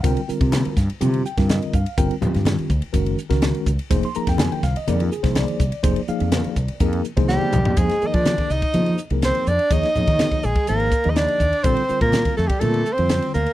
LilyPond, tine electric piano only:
\new Staff \with { instrumentName = "Tine electric piano" } { \time 4/4 \key f \dorian \tempo 4 = 124 << { <ges'' g''>8 r2 g''8 ees''8 f''8 | g''8 r2. r8 | r16 c'''16 bes''16 g''16 aes''16 g''16 f''16 ees''16 d''16 f'16 aes'16 r16 d''4~ | d''2 r2 |
r1 | r1 | r1 | } \\ { <d g c' f' bes'>16 r16 <d g c' f' bes'>4 r8 <d g c' f' g'>8 r16 <d g c' f' bes'>8. r8 | <d g c' f' bes'>16 r16 <d g c' f' g'>4 r8 <ees aes des' ges' bes'>8 r16 <ees aes des' ges' bes'>8. r8 | <f bes ees' aes' c''>16 r16 <f bes ees' aes' bes'>4 r8 <f bes ees' aes' bes'>8 r16 <f bes ees' aes' c''>8. r8 | <f bes ees' aes' c''>16 r16 <f bes ees' aes' f''>4 r8 <f bes ees' aes' bes'>8 r16 <f bes ees' aes' c''>8. r8 |
<f bes ees' aes' c''>16 r16 <ees f bes aes' bes'>4 r8 <f bes ees' aes' c''>8 r16 <f bes ees' aes' bes'>8. r8 | <f bes ees' aes' des''>16 r16 <f bes ees' aes' des''>4 r8 <f bes ees' aes' c''>8 r16 <f bes ees' aes' ees''>8. r8 | <d g c' f' a'>16 r16 <d g c' f' bes'>4 r8 <d g c' f' bes'>8 r16 <d g c' f' c''>8. r8 | } >> }